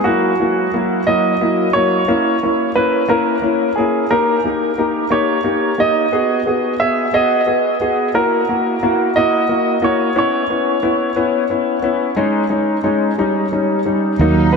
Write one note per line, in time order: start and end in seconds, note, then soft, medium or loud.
0.04 0.31 F#3 medium
0.04 0.31 A#3 medium
0.04 0.31 E4 medium
0.04 1.02 F#4 medium
0.40 0.65 F#3 medium
0.40 0.66 A#3 soft
0.40 0.65 E4 medium
0.74 0.99 F#3 medium
0.74 0.99 A#3 medium
0.74 0.99 E4 medium
1.07 1.33 F#3 medium
1.07 1.33 A#3 medium
1.07 1.33 E4 medium
1.07 1.70 D#5 medium
1.41 1.66 F#3 medium
1.41 1.67 A#3 medium
1.41 1.67 E4 medium
1.73 2.00 F#3 medium
1.73 2.01 A#3 medium
1.73 2.01 E4 medium
1.73 2.71 C#5 medium
2.08 2.34 A#3 medium
2.08 2.34 C#4 medium
2.08 2.34 E4 medium
2.43 2.68 A#3 medium
2.43 2.68 C#4 medium
2.43 2.68 E4 medium
2.75 3.01 A#3 medium
2.75 3.01 C#4 medium
2.75 3.02 E4 medium
2.75 3.10 B4 medium
3.08 3.34 A#3 medium
3.08 3.35 C#4 medium
3.08 3.35 E4 medium
3.08 3.72 A#4 medium
3.42 3.68 A#3 medium
3.42 3.68 C#4 soft
3.42 3.68 E4 medium
3.76 4.03 A#3 medium
3.76 4.03 C#4 medium
3.76 4.03 E4 medium
3.76 4.10 G#4 medium
4.11 4.36 A#3 medium
4.11 4.36 D#4 medium
4.11 4.36 G4 medium
4.11 5.08 A#4 medium
4.44 4.70 A#3 medium
4.44 4.70 D#4 soft
4.44 4.70 G4 medium
4.78 5.04 A#3 medium
4.78 5.04 D#4 medium
4.78 5.04 G4 medium
5.10 5.37 A#3 medium
5.10 5.37 D#4 medium
5.10 5.37 G4 medium
5.10 5.81 C#5 medium
5.44 5.71 A#3 medium
5.44 5.71 D#4 medium
5.44 5.71 G4 medium
5.78 6.05 A#3 medium
5.78 6.05 D#4 medium
5.78 6.05 G4 medium
5.78 6.77 D#5 medium
6.12 6.38 B3 medium
6.12 6.39 F#4 medium
6.12 6.39 G#4 medium
6.46 6.72 B3 medium
6.46 6.73 F#4 soft
6.46 6.73 G#4 medium
6.80 7.06 B3 medium
6.80 7.06 F#4 medium
6.80 7.07 G#4 medium
6.80 7.15 E5 medium
7.13 7.40 B3 medium
7.13 7.40 F#4 medium
7.13 7.40 G#4 medium
7.13 8.19 D#5 medium
7.46 7.73 B3 medium
7.46 7.73 F#4 medium
7.46 7.74 G#4 medium
7.81 8.07 B3 medium
7.81 8.08 F#4 medium
7.81 8.08 G#4 medium
8.14 8.41 A#3 medium
8.14 8.41 E4 medium
8.14 8.41 F#4 medium
8.14 9.19 A#4 medium
8.49 8.75 A#3 medium
8.49 8.75 E4 soft
8.49 8.75 F#4 medium
8.83 9.09 A#3 medium
8.83 9.09 E4 medium
8.83 9.09 F#4 medium
9.16 9.42 A#3 medium
9.16 9.42 E4 medium
9.16 9.42 F#4 medium
9.16 9.85 D#5 medium
9.49 9.75 A#3 medium
9.49 9.75 E4 medium
9.49 9.75 F#4 medium
9.82 10.08 A#3 medium
9.82 10.08 E4 medium
9.82 10.09 F#4 medium
9.82 10.17 C#5 medium
10.16 10.42 B3 medium
10.16 10.42 C#4 medium
10.16 10.42 E4 medium
10.16 13.49 C#5 medium
10.50 10.76 B3 medium
10.50 10.76 C#4 medium
10.50 10.76 E4 medium
10.82 11.09 B3 medium
10.82 11.09 C#4 medium
10.82 11.09 E4 medium
11.16 11.42 B3 medium
11.16 11.42 C#4 medium
11.16 11.43 E4 medium
11.50 11.76 B3 medium
11.50 11.76 C#4 medium
11.50 11.76 E4 medium
11.82 12.09 B3 medium
11.82 12.09 C#4 medium
11.82 12.09 E4 medium
12.16 12.43 G#3 medium
12.16 12.43 C#4 medium
12.16 12.43 D#4 medium
12.50 12.76 G#3 medium
12.50 12.76 C#4 medium
12.50 12.76 D#4 medium
12.84 13.10 G#3 medium
12.84 13.10 C#4 medium
12.84 13.10 D#4 medium
13.18 13.44 G3 medium
13.18 13.45 C#4 medium
13.18 13.45 D#4 medium
13.52 13.78 G3 medium
13.52 13.79 C#4 medium
13.52 13.79 D#4 medium
13.86 14.12 G3 medium
13.86 14.12 C#4 soft
13.86 14.12 D#4 medium
14.18 14.57 D#2 medium
14.18 14.57 A#2 medium
14.18 14.57 F#3 medium
14.18 14.46 F#3 medium
14.18 14.46 A#3 medium
14.18 14.57 D#4 medium
14.18 14.46 D#4 medium
14.53 14.57 F#3 medium
14.53 14.57 A#3 medium
14.53 14.57 D#4 medium
14.53 14.57 B4 medium